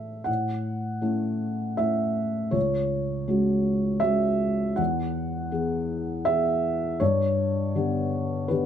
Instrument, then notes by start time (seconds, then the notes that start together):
felt piano
Already playing: A2 E3 A3 C#4 E5
0.24 A2 F#5
1.01 A3 C#4 E4
1.77 A3 C#4 E4 E5
2.51 C#2 C#5
3.28 G#3 C#4 F#4
4.00 G#3 C#4 F#4 E5
4.76 E2 F#5
5.51 E3 B3 G#4
6.25 E3 B3 G#4 E5
7.00 G2 C#5
7.75 D3 B3 G4
8.48 D3 B3 G4 B4